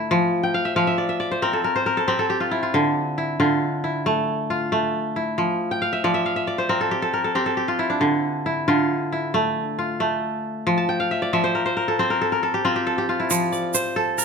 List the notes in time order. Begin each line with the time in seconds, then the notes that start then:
Already playing: D3 A3 E4
0.11 F3
0.43 G5
0.54 F5
0.65 E5
0.76 F3 F5
0.87 E5
0.98 D5
1.09 E5
1.20 D5
1.31 C5
1.42 C4 A#4
1.53 A4
1.64 A#4
1.76 C5
1.86 A#4
1.97 A4
2.08 C4 G4
2.19 A4
2.30 G4
2.40 F4
2.51 E4
2.63 F4
2.74 D3
3.18 E4
3.40 D3 F4
3.84 E4
4.06 A3
4.50 F4
4.72 A3
5.16 E4
5.38 F3
5.71 G5
5.82 F5
5.93 E5
6.04 F3 D5
6.14 E5
6.26 F5
6.36 E5
6.47 D5
6.58 C5
6.69 C4 A#4
6.81 A4
6.91 G4
7.02 A4
7.13 A#4
7.24 A4
7.35 C4 G4
7.46 A4
7.57 G4
7.68 F4
7.79 E4
7.90 D4
8.01 D3
8.46 E4
8.68 D3 F4
9.13 E4
9.34 A3
9.79 F4
10.00 A3
10.67 F3
10.78 A5
10.89 G5
11.00 F5
11.11 E5
11.22 D5
11.33 F3 E5
11.44 C5
11.55 A#4
11.66 C5
11.77 A#4
11.88 A4
11.99 C4 C5
12.10 A#4
12.21 A4
12.32 A#4
12.43 A4
12.54 G4
12.65 C4 F4
12.76 G4
12.87 A4
12.98 G4
13.09 F4
13.20 E4
13.31 F3, shaker
13.52 D5, shaker
13.74 C5, shaker
13.96 A4
14.18 A#4, shaker